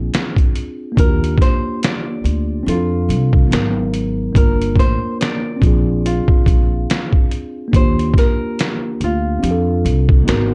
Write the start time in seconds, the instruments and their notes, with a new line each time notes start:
Already playing: tine electric piano C4 D4 F4 G#4, nylon-string guitar G#4
0.14 snare, closed hi-hat
0.36 kick, closed hi-hat
0.55 closed hi-hat
0.92 tine electric piano A#3 D4
0.97 upright bass D#2, tine electric piano F4, nylon-string guitar A#4, kick, closed hi-hat
1.03 tine electric piano F#4
1.09 tine electric piano G4
1.24 closed hi-hat
1.38 nylon-string guitar C5, kick, snare
1.42 closed hi-hat
1.83 nylon-string guitar D5, snare, closed hi-hat
2.24 upright bass D2, closed hi-hat
2.63 upright bass F2, tine electric piano C4 D4 E4
2.68 nylon-string guitar F4, tine electric piano A4, closed hi-hat
2.73 tine electric piano F4
3.09 upright bass C2, closed hi-hat
3.33 kick
3.48 upright bass G#1, tine electric piano F#3 B3 D#4
3.52 tine electric piano A#4, snare, closed hi-hat
3.94 closed hi-hat
4.33 upright bass G1, tine electric piano A#3 D4 F4, kick, closed hi-hat
4.37 nylon-string guitar A#4, tine electric piano A#4
4.62 closed hi-hat
4.76 upright bass A1, nylon-string guitar C5, kick, snare
4.80 closed hi-hat
5.21 nylon-string guitar D5, snare, closed hi-hat
5.56 tine electric piano C4 D4
5.62 upright bass A#1, tine electric piano F4, kick, closed hi-hat
5.67 tine electric piano G#4
6.06 nylon-string guitar F4, closed hi-hat
6.28 muted upright bass stroke, kick
6.46 upright bass A#1, kick, closed hi-hat
6.90 snare, closed hi-hat
7.13 kick
7.31 closed hi-hat
7.68 tine electric piano A#3 D4
7.73 upright bass D#2, tine electric piano F4, nylon-string guitar C5, kick, closed hi-hat
7.78 tine electric piano G4
7.99 closed hi-hat
8.14 kick, snare
8.18 nylon-string guitar A#4, closed hi-hat
8.59 snare, closed hi-hat
9.00 upright bass D2, nylon-string guitar F4, closed hi-hat
9.39 upright bass F2, tine electric piano C4 D4 F4
9.44 tine electric piano G4, closed hi-hat
9.51 tine electric piano A4
9.85 upright bass C2, closed hi-hat
10.09 kick
10.24 upright bass G#1, tine electric piano A#3 D#4 F#4
10.28 tine electric piano B3 A#4, snare, closed hi-hat